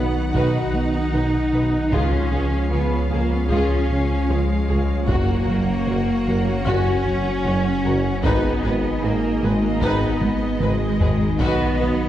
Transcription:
Already playing: tuba B1, sub bass B1, analog synth pad D#3 D#4 F#4 F#5, analog synth bass B3, cello section B3, violin section F#5
0.34 tuba B1, double bass section B1, analog synth bass B2, cello section D#4, violin section F#4, french horn section F#4 D#5, viola section B4, taiko
0.74 analog synth bass B3
1.13 double bass section B1, tuba B1, analog synth bass B2, viola section B4, violin section D#5
1.53 double bass section B1, tuba B1, analog synth bass B2, violin section B4, viola section B4
1.92 analog synth bass C#2, sub bass C#2, double bass section C#2, tuba C#2, analog synth pad F3 C#4 G#4 C#5, cello section C#4, violin section F4 F5, french horn section G#4 F5, viola section G#4, taiko
2.31 double bass section C#2, tuba C#2, analog synth bass C#3, viola section G#4, violin section G#4
2.71 double bass section C#2, analog synth bass C#2, tuba C#2, cello section B3, viola section G#4, violin section C#5
3.11 tuba C#2, double bass section C#2, analog synth bass C#3, cello section A#3, viola section G#4, violin section G#4
3.31 cello section B3
3.49 double bass section C#2, analog synth bass C#2, tuba C#2, cello section C#4, violin section F4, viola section G#4, french horn section G#4 F5, taiko
3.90 analog synth bass C#3
4.29 double bass section C#2, analog synth bass C#2, tuba C#2, cello section G#3, viola section G#4, violin section C#5
4.69 analog synth bass C#2, tuba C#2, double bass section C#2, viola section G#4, violin section G#4
5.07 sub bass F#1, tuba F#1, double bass section F#1, analog synth bass F#2, analog synth pad F#3 F#4, cello section A#3, viola section F#4, violin section F#4 F#5, french horn section A#4 C#5, taiko
5.47 tuba F#1, double bass section F#1, analog synth bass F#3, viola section F#4, violin section A#4
5.87 tuba F#1, double bass section F#1, analog synth bass F#2, viola section F#4, violin section C#5
6.27 tuba F#1, double bass section F#1, analog synth bass F#3, viola section F#4, violin section A#4
6.66 tuba F#1, double bass section F#1, analog synth bass F#2, cello section C#4, violin section F#4, viola section F#4, french horn section A#4 C#5, taiko
7.06 analog synth bass F#3
7.45 tuba F#1, double bass section F#1, analog synth bass F#2, viola section F#4, violin section C#5
7.84 tuba F#1, double bass section F#1, analog synth bass F#2, viola section F#4, violin section A#4
8.23 sub bass G#1, double bass section G#1, tuba G#1, analog synth bass G#2, analog synth pad D#3 D#4 G#4 D#5, cello section B3, violin section D#4 D#5, french horn section G#4 D#5, viola section B4, taiko
8.63 double bass section G#1, tuba G#1, analog synth bass G#3, violin section G#4, viola section B4
9.02 double bass section G#1, tuba G#1, analog synth bass G#2, cello section A#3, viola section G#4, violin section B4
9.42 double bass section G#1, tuba G#1, cello section G#3, analog synth bass G#3, violin section G#4, viola section B4
9.63 cello section A#3
9.81 double bass section G#1, tuba G#1, analog synth bass G#2, cello section B3, violin section D#4, french horn section G#4 D#5, viola section B4, taiko
10.21 analog synth bass G#3, taiko high
10.60 double bass section G#1, tuba G#1, analog synth bass G#2, cello section G#3, violin section B4, viola section B4, taiko mid
11.00 double bass section G#1, tuba G#1, analog synth bass G#2, violin section G#4, viola section B4, taiko low
11.39 sub bass B1, double bass section B1, tuba B1, analog synth bass B2, analog synth pad F#3, cello section B3, french horn section F#4 D#5, violin section F#4 D#5, viola section B4, taiko
11.79 tuba B1, double bass section B1, analog synth bass B3, violin section B4, viola section B4

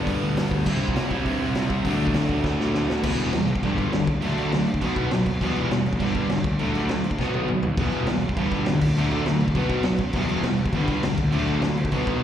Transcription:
Already playing: distorted electric guitar G2 D3 G3 B3 D4
0.07 picked electric bass G1, kick, open hi-hat
0.23 picked electric bass D2
0.37 picked electric bass G1, snare, open hi-hat
0.51 picked electric bass D2, kick
0.66 picked electric bass C2, distorted electric guitar C3 G3 C4 E4, kick, crash
0.83 picked electric bass C2
0.88 kick
0.96 picked electric bass C2, snare, open hi-hat
1.11 picked electric bass C2, distorted electric guitar C3 G3 C4 E4, kick
1.25 picked electric bass G2, kick, open hi-hat
1.42 picked electric bass C2
1.55 picked electric bass C2, snare, open hi-hat
1.70 picked electric bass C2, kick
1.85 picked electric bass D2, distorted electric guitar D3 F#3 A3 D4, kick, open hi-hat
2.07 kick
2.14 picked electric bass D2, snare, open hi-hat
2.28 distorted electric guitar F#3 A3 D4, kick
2.32 distorted electric guitar D3
2.44 picked electric bass D2, kick, snare
2.59 picked electric bass A2, snare
2.74 picked electric bass D2, snare
2.89 picked electric bass D2, snare
3.03 picked electric bass E1, distorted electric guitar E2 B2 E3 G3 B3, kick, crash
3.18 picked electric bass E1, crash
3.33 picked electric bass E1, distorted electric guitar E2 B2 E3 G3, snare, crash
3.48 picked electric bass E1, crash
3.56 kick
3.62 picked electric bass G1, distorted electric guitar G2 D3 G3, kick, crash
3.78 kick, crash
3.92 picked electric bass G1, distorted electric guitar G2 D3, snare, crash
4.07 picked electric bass D2, kick, crash
4.21 picked electric bass D2, distorted electric guitar D3 F#3 A3 D4, crash
4.38 picked electric bass D2, crash
4.51 picked electric bass D2, distorted electric guitar D3 F#3 A3, snare, crash
4.67 picked electric bass D2, crash
4.74 kick
4.81 picked electric bass B1, distorted electric guitar B2 F#3 B3, kick, crash
4.96 picked electric bass B1, kick, crash
5.11 picked electric bass B1, distorted electric guitar B2 F#3, snare, crash
5.26 picked electric bass B1, kick, crash
5.41 picked electric bass E1, distorted electric guitar E2 B2 E3 G3 B3, kick, crash
5.55 picked electric bass E1, crash
5.71 picked electric bass E1, distorted electric guitar E2 B2 E3 G3, snare, crash
5.86 picked electric bass A1, crash
5.93 kick
5.99 picked electric bass G1, distorted electric guitar G2 D3 G3, kick, crash
6.15 kick, crash
6.29 picked electric bass G1, distorted electric guitar G2 D3, snare, crash
6.44 picked electric bass D2, kick, crash
6.59 picked electric bass D2, distorted electric guitar D3 F#3 A3 D4, crash
6.75 picked electric bass D2, crash
6.89 picked electric bass D2, distorted electric guitar D3 F#3 A3, snare, crash
7.04 picked electric bass D2, crash
7.11 kick
7.19 picked electric bass B1, distorted electric guitar B2 F#3 B3, kick, snare
7.34 picked electric bass B1, high tom
7.48 picked electric bass B1, distorted electric guitar B2 F#3, mid tom
7.63 picked electric bass D#2, floor tom
7.77 picked electric bass E1, distorted electric guitar E2 B2 E3 G3 B3, kick, crash
7.92 picked electric bass E1, crash
8.07 picked electric bass E1, distorted electric guitar E2 B2 E3 G3, snare, crash
8.22 picked electric bass E1, crash
8.29 kick
8.37 picked electric bass G1, distorted electric guitar G2 D3 G3, kick, crash
8.51 kick, crash
8.66 picked electric bass E2, distorted electric guitar G2 D3, snare, crash
8.81 picked electric bass D2, kick, crash
8.96 picked electric bass D2, distorted electric guitar D3 F#3 A3 D4, crash
9.11 picked electric bass D2, crash
9.26 picked electric bass D2, distorted electric guitar D3 F#3 A3, snare, crash
9.40 picked electric bass C2, crash
9.48 kick
9.55 picked electric bass B1, distorted electric guitar B2 F#3 B3, kick, crash
9.69 picked electric bass B1, kick, crash
9.83 picked electric bass B1, distorted electric guitar B2 F#3, snare, crash
9.98 picked electric bass F#2, kick, crash
10.13 picked electric bass E1, distorted electric guitar E2 B2 E3 G3 B3, kick, crash
10.29 picked electric bass E1, crash
10.43 picked electric bass E1, distorted electric guitar E2 B2 E3 G3, snare, crash
10.58 picked electric bass F#1, crash
10.66 kick
10.72 picked electric bass G1, distorted electric guitar G2 D3 G3, kick, crash
10.88 kick, crash
11.02 picked electric bass C#2, distorted electric guitar G2 D3, snare, crash
11.17 picked electric bass D2, kick, crash
11.31 picked electric bass D2, distorted electric guitar D3 F#3 A3 D4, crash
11.48 picked electric bass D2, crash
11.62 picked electric bass D2, distorted electric guitar D3 F#3 A3, snare, crash
11.77 picked electric bass D2, crash
11.85 kick
11.92 picked electric bass B1, distorted electric guitar B2 F#3 B3, kick, crash
12.07 picked electric bass B1, kick, crash
12.20 distorted electric guitar B2

